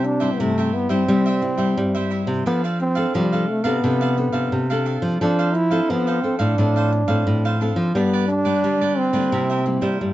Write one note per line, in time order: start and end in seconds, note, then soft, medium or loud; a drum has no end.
0.00 0.30 C3 medium
0.00 0.37 C3 medium
0.00 0.16 G3 medium
0.00 0.16 C4 medium
0.00 0.17 E4 medium
0.00 muted cavaquinho stroke soft
0.05 0.33 D4 medium
0.20 0.51 G3 medium
0.20 0.51 C4 medium
0.20 0.51 E4 medium
0.20 0.38 G4 medium
0.20 0.38 C5 medium
0.20 0.37 E5 medium
0.33 0.42 B3 medium
0.40 1.05 G2 soft
0.40 0.69 C3 medium
0.40 0.75 A3 medium
0.40 0.56 E4 soft
0.40 0.56 G4 soft
0.40 0.56 C5 medium
0.40 0.56 E5 soft
0.58 0.86 G3 medium
0.58 0.87 C4 soft
0.58 0.87 E4 medium
0.58 0.90 G4 medium
0.58 0.89 C5 medium
0.58 0.88 E5 medium
0.74 0.92 B3 medium
0.89 1.05 G3 medium
0.89 1.02 G3 medium
0.89 1.03 C4 medium
0.89 2.12 C4 medium
0.89 1.03 E4 medium
0.89 1.07 G4 medium
0.89 1.07 C5 medium
0.89 1.06 E5 medium
1.08 1.74 C3 medium
1.08 1.52 G3 medium
1.08 1.29 G3 medium
1.08 1.29 C4 medium
1.08 1.24 E4 medium
1.08 1.29 E4 medium
1.08 1.25 G4 soft
1.08 1.25 C5 medium
1.08 1.24 E5 medium
1.26 1.41 G4 medium
1.26 1.41 C5 medium
1.26 1.41 E5 medium
1.42 1.88 G3 medium
1.42 1.89 C4 medium
1.42 1.89 E4 medium
1.42 muted cavaquinho stroke soft
1.58 1.74 G3 medium
1.58 1.93 G4 medium
1.58 1.92 C5 medium
1.58 1.92 E5 medium
1.77 2.43 G2 medium
1.77 2.21 G3 medium
1.95 2.41 G3 soft
1.95 2.41 C4 medium
1.95 2.42 E4 medium
1.95 2.10 G4 medium
1.95 2.10 C5 medium
1.95 2.10 E5 medium
2.11 2.44 E4 medium
2.11 2.44 G4 soft
2.11 2.45 C5 medium
2.11 2.45 E5 soft
2.27 2.43 C3 medium
2.46 3.05 F3 medium
2.46 3.12 F3 medium
2.46 2.62 B3 medium
2.46 2.62 D4 soft
2.46 2.93 D4 medium
2.46 2.62 A4 soft
2.46 2.93 A4 medium
2.46 2.62 D5 soft
2.46 2.63 F5 medium
2.64 2.79 A4 medium
2.64 2.79 D5 medium
2.64 2.79 F5 medium
2.80 3.13 C4 medium
2.80 muted cavaquinho stroke soft
2.95 3.26 C4 medium
2.95 3.26 D4 medium
2.95 3.13 A4 medium
2.95 3.26 A4 medium
2.95 3.13 D5 medium
2.95 3.12 F5 medium
3.14 3.81 C3 medium
3.14 3.44 F3 medium
3.14 3.51 G3 medium
3.14 3.30 D4 soft
3.14 3.31 A4 soft
3.14 3.31 D5 soft
3.14 3.31 F5 soft
3.32 3.61 C4 medium
3.32 3.62 D4 medium
3.32 3.62 A4 medium
3.32 3.65 A4 medium
3.32 3.64 D5 medium
3.32 3.63 F5 medium
3.49 3.67 A3 medium
3.64 3.80 C3 medium
3.64 4.86 B3 medium
3.64 3.77 C4 medium
3.64 3.78 D4 medium
3.64 3.82 A4 medium
3.64 3.78 A4 medium
3.64 3.82 D5 medium
3.64 3.81 F5 medium
3.83 4.28 C3 medium
3.83 4.49 F3 medium
3.83 4.13 C4 medium
3.83 3.99 D4 medium
3.83 4.13 D4 medium
3.83 3.99 A4 medium
3.83 4.13 A4 medium
3.83 4.00 D5 soft
3.83 4.00 F5 medium
4.01 4.16 A4 medium
4.01 4.16 D5 medium
4.01 4.17 F5 medium
4.17 4.64 D4 medium
4.17 4.64 A4 medium
4.17 muted cavaquinho stroke soft
4.32 4.49 C3 medium
4.32 4.68 A4 medium
4.32 4.67 D5 medium
4.32 4.67 F5 medium
4.52 4.96 C3 medium
4.52 5.18 C3 soft
4.70 5.16 C4 medium
4.70 5.16 D4 medium
4.70 4.85 A4 medium
4.70 5.17 A4 medium
4.70 4.85 D5 medium
4.70 4.86 F5 medium
4.86 5.19 D4 soft
4.86 5.19 A4 medium
4.86 5.20 D5 soft
4.86 5.20 F5 medium
5.02 5.17 F3 medium
5.21 5.86 F3 soft
5.21 5.79 F3 loud
5.21 5.53 C4 medium
5.21 5.37 D4 soft
5.21 5.54 D4 medium
5.21 5.57 D4 medium
5.21 5.37 A4 soft
5.21 5.54 A4 medium
5.21 5.37 C5 soft
5.21 5.38 F5 medium
5.39 5.54 A4 medium
5.39 5.54 C5 medium
5.39 5.54 F5 medium
5.54 5.91 E4 medium
5.54 muted cavaquinho stroke soft
5.71 6.18 C4 medium
5.71 6.18 D4 medium
5.71 6.18 A4 medium
5.71 5.88 A4 medium
5.71 5.88 C5 medium
5.71 5.87 F5 medium
5.90 6.55 F3 medium
5.90 6.19 F3 medium
5.90 6.24 B3 medium
5.90 6.06 D4 soft
5.90 6.06 A4 medium
5.90 6.06 C5 soft
5.90 6.06 F5 soft
6.07 6.39 A4 medium
6.07 6.39 C5 medium
6.07 6.38 F5 medium
6.23 6.39 C4 medium
6.23 6.44 C4 soft
6.23 6.44 D4 medium
6.23 6.44 A4 medium
6.39 6.55 A2 medium
6.39 7.56 D4 medium
6.39 6.57 A4 medium
6.39 6.56 C5 medium
6.39 6.56 F5 medium
6.58 7.02 A2 medium
6.58 7.24 F3 medium
6.58 7.04 C4 medium
6.58 6.74 D4 medium
6.58 7.05 D4 medium
6.58 6.74 A4 medium
6.58 7.05 A4 medium
6.58 6.74 C5 medium
6.58 6.75 F5 medium
6.76 6.91 A4 medium
6.76 6.91 C5 medium
6.76 6.92 F5 medium
6.92 muted cavaquinho stroke soft
7.08 7.23 A2 medium
7.08 7.55 C4 medium
7.08 7.55 D4 medium
7.08 7.55 A4 medium
7.08 7.43 A4 medium
7.08 7.42 C5 soft
7.08 7.42 F5 medium
7.27 7.71 A2 medium
7.27 7.92 F3 medium
7.45 7.60 A4 medium
7.45 7.60 C5 medium
7.45 7.60 F5 medium
7.61 7.90 C4 soft
7.61 7.94 D4 soft
7.61 7.90 D4 soft
7.61 7.94 A4 soft
7.61 7.90 A4 medium
7.61 7.94 C5 soft
7.61 7.95 F5 medium
7.76 7.92 F3 medium
7.95 8.61 G2 medium
7.95 8.54 G3 medium
7.95 8.28 G3 medium
7.95 8.27 B3 medium
7.95 8.28 B3 medium
7.95 8.11 D4 medium
7.95 8.28 D4 medium
7.95 8.12 G4 soft
7.95 8.12 B4 medium
7.95 8.12 D5 medium
8.13 8.28 G4 medium
8.13 8.29 B4 medium
8.13 8.29 D5 medium
8.28 8.99 D4 loud
8.28 muted cavaquinho stroke soft
8.45 8.75 G3 medium
8.45 8.75 B3 medium
8.45 8.75 D4 medium
8.45 8.63 G4 medium
8.45 8.62 B4 medium
8.45 8.62 D5 medium
8.64 9.29 D3 soft
8.64 8.93 G3 medium
8.64 8.80 D4 soft
8.64 8.80 G4 soft
8.64 8.80 B4 soft
8.64 8.80 D5 soft
8.81 9.10 G3 medium
8.81 9.11 B3 medium
8.81 9.11 D4 medium
8.81 9.13 G4 medium
8.81 9.12 B4 medium
8.81 9.12 D5 medium
8.98 10.01 C4 medium
9.13 9.29 D3 medium
9.13 9.60 G3 medium
9.13 9.60 A#3 medium
9.13 9.61 E4 medium
9.13 9.31 G4 medium
9.13 9.30 B4 medium
9.13 9.30 D5 medium
9.32 9.76 C3 medium
9.32 9.98 C3 medium
9.32 9.48 E4 medium
9.32 9.48 A#4 medium
9.32 9.49 C5 soft
9.32 9.49 E5 medium
9.50 9.65 A#4 soft
9.50 9.65 C5 medium
9.50 9.65 E5 medium
9.66 10.12 G3 soft
9.66 10.12 A#3 medium
9.66 10.13 E4 medium
9.66 muted cavaquinho stroke soft
9.81 9.97 G3 medium
9.81 10.13 A#4 soft
9.81 10.13 C5 medium
9.81 10.13 E5 medium
10.01 10.13 G2 soft
10.01 10.13 G3 medium